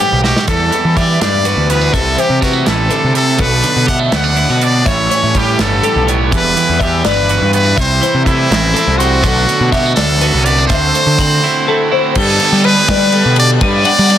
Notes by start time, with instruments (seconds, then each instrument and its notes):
Already playing: clean electric guitar A2 E3 B3, trumpet G4
0.00 clean electric guitar G3 G5, closed hi-hat
0.13 picked electric bass B1
0.24 clean electric guitar F#4 E5, trumpet G4, snare
0.36 snare
0.47 clean electric guitar E2 A4, picked electric bass E2, overdriven electric guitar E3 G3 B3 E4, trumpet A4, kick, closed hi-hat
0.71 clean electric guitar E3, overdriven electric guitar E3 G3 B3 E4, closed hi-hat
0.85 picked electric bass E3
0.97 overdriven electric guitar E3 G3 B3 E4, clean electric guitar G3 E5, trumpet D5, kick, closed hi-hat
1.20 picked electric bass G2, overdriven electric guitar E3 G3 B3 E4, clean electric guitar D4 D5, trumpet D5, snare, closed hi-hat
1.45 overdriven electric guitar E3 G3 B3 E4, clean electric guitar F#4 B4, closed hi-hat
1.57 picked electric bass D2
1.70 overdriven electric guitar E3 G3 B3 E4, clean electric guitar B3, trumpet B4, closed hi-hat
1.81 clean electric guitar D4
1.92 picked electric bass C2, clean electric guitar C3 E5, overdriven electric guitar C3 G3 C4 E4, trumpet A4, kick, closed hi-hat
2.17 overdriven electric guitar C3 G3 C4 E4, clean electric guitar E3 C5, trumpet G4, closed hi-hat
2.30 picked electric bass C3
2.41 overdriven electric guitar C3 G3 C4 E4, clean electric guitar G3 B4, trumpet F#4, kick, closed hi-hat
2.53 clean electric guitar A3
2.65 picked electric bass A1, overdriven electric guitar C3 G3 C4 E4, clean electric guitar E3, trumpet A4, snare, closed hi-hat
2.89 overdriven electric guitar C3 G3 C4 E4, clean electric guitar D3 A4, closed hi-hat
3.04 picked electric bass C3
3.14 clean electric guitar C3 C5, overdriven electric guitar C3 G3 C4 E4, trumpet A4, closed hi-hat
3.38 picked electric bass B1, clean electric guitar B2 A4, overdriven electric guitar B2 F#3 B3 D4, trumpet B4, kick, closed hi-hat
3.62 overdriven electric guitar B2 F#3 B3 D4, clean electric guitar D3, closed hi-hat
3.76 picked electric bass B2
3.87 overdriven electric guitar B2 F#3 B3 D4, clean electric guitar G3 E5, trumpet F#5, kick, closed hi-hat
3.99 clean electric guitar A3
4.12 picked electric bass D2, overdriven electric guitar B2 F#3 B3 D4, clean electric guitar B3 D5, trumpet F#5, snare, closed hi-hat
4.24 clean electric guitar D4
4.37 overdriven electric guitar B2 F#3 B3 D4, clean electric guitar E4 B4, closed hi-hat
4.50 picked electric bass B2, clean electric guitar F#4
4.61 overdriven electric guitar B2 F#3 B3 D4, clean electric guitar D4, trumpet D5, closed hi-hat
4.85 picked electric bass A1, clean electric guitar A2 E5, overdriven electric guitar E3 G3 C#4 E4, trumpet C#5, kick, closed hi-hat
5.10 clean electric guitar E3 C#5, overdriven electric guitar E3 G3 C#4 E4, closed hi-hat
5.23 picked electric bass A2
5.35 overdriven electric guitar E3 G3 C#4 E4, clean electric guitar G3 B4, trumpet G4, kick, closed hi-hat
5.59 picked electric bass G1, overdriven electric guitar E3 G3 C#4 E4, clean electric guitar B3, trumpet A4, snare, closed hi-hat
5.83 overdriven electric guitar E3 G3 C#4 E4, clean electric guitar G4 A4, closed hi-hat
5.96 picked electric bass B1
6.07 overdriven electric guitar E3 G3 C#4 E4, clean electric guitar B3 C#5, closed hi-hat
6.31 picked electric bass E1, clean electric guitar E2 A4, overdriven electric guitar E3 G3 B3 E4, kick, closed hi-hat
6.37 trumpet B4
6.56 clean electric guitar E3, overdriven electric guitar E3 G3 B3 E4, closed hi-hat
6.70 picked electric bass E2
6.79 overdriven electric guitar E3 G3 B3 E4, clean electric guitar G3 E5, trumpet G4, kick, closed hi-hat
7.04 picked electric bass G1, overdriven electric guitar E3 G3 B3 E4, clean electric guitar B3 D5, trumpet B4, snare, closed hi-hat
7.16 clean electric guitar D4
7.28 overdriven electric guitar E3 G3 B3 E4, clean electric guitar F#4 B4, closed hi-hat
7.42 picked electric bass G2
7.52 overdriven electric guitar E3 G3 B3 E4, clean electric guitar B3, trumpet B4, closed hi-hat
7.65 clean electric guitar D4
7.76 picked electric bass C2, overdriven electric guitar C3 G3 C4 E4, clean electric guitar C3 E5, trumpet C5, kick, closed hi-hat
8.01 overdriven electric guitar C3 G3 C4 E4, clean electric guitar E3 C5, closed hi-hat
8.14 picked electric bass C3
8.25 overdriven electric guitar C3 G3 C4 E4, clean electric guitar A3 B4, trumpet E4, kick, closed hi-hat
8.50 picked electric bass A1, overdriven electric guitar C3 G3 C4 E4, clean electric guitar C4, snare, closed hi-hat
8.74 overdriven electric guitar C3 G3 C4 E4, clean electric guitar C4 A4, closed hi-hat
8.87 picked electric bass C2
8.98 overdriven electric guitar C3 G3 C4 E4, clean electric guitar C4 C5, trumpet F#4, closed hi-hat
9.22 picked electric bass B1, clean electric guitar B2 D3 A3 D4 A4, overdriven electric guitar F#3 B3 D4 F#4, kick, closed hi-hat
9.47 clean electric guitar D3, overdriven electric guitar F#3 B3 D4 F#4, closed hi-hat
9.61 picked electric bass B2
9.72 overdriven electric guitar F#3 B3 D4 F#4, clean electric guitar G3 E5, trumpet F#4, kick, closed hi-hat
9.86 clean electric guitar A3
9.96 picked electric bass D2, overdriven electric guitar F#3 B3 D4 F#4, clean electric guitar D4 D5, trumpet A4, snare, closed hi-hat
10.21 overdriven electric guitar F#3 B3 D4 F#4, clean electric guitar F#4 B4, closed hi-hat
10.34 picked electric bass C2
10.45 overdriven electric guitar F#3 B3 D4 F#4, clean electric guitar B3, trumpet D5, closed hi-hat
10.59 clean electric guitar D4
10.68 picked electric bass D2, overdriven electric guitar D3 A3 C4 F#4, clean electric guitar D3 E5, trumpet C5, kick, closed hi-hat
10.94 overdriven electric guitar D3 A3 C4 F#4, clean electric guitar A3 C5, closed hi-hat
11.07 picked electric bass D3
11.19 overdriven electric guitar D3 A3 C4 F#4, clean electric guitar C4 B5, kick, closed hi-hat
11.43 overdriven electric guitar D3 A3 C4 F#4, clean electric guitar E4
11.66 overdriven electric guitar D3 A3 C4 F#4, clean electric guitar E4 A4
11.91 overdriven electric guitar D3 A3 C4 F#4, clean electric guitar E4 C5
12.15 picked electric bass G2, overdriven electric guitar G3 B3 D4 G4, clean electric guitar G4, trumpet A4, kick, crash
12.40 overdriven electric guitar G3 B3 D4 G4, ride
12.52 picked electric bass G3
12.64 overdriven electric guitar G3 B3 D4 G4, clean electric guitar B4, trumpet B4, ride
12.88 picked electric bass G3, overdriven electric guitar G3 B3 D4 G4, clean electric guitar D5, kick, snare, ride
13.12 overdriven electric guitar G3 B3 D4 G4, clean electric guitar A4, ride
13.26 picked electric bass B2
13.36 overdriven electric guitar G3 B3 D4 G4, trumpet D5, ride
13.61 picked electric bass G2, overdriven electric guitar G3 B3 D4 G4, clean electric guitar B4, trumpet D5, kick, ride
13.84 overdriven electric guitar G3 B3 D4 G4, clean electric guitar F#5, ride
13.99 picked electric bass G3
14.09 overdriven electric guitar G3 B3 D4 G4, clean electric guitar D5, ride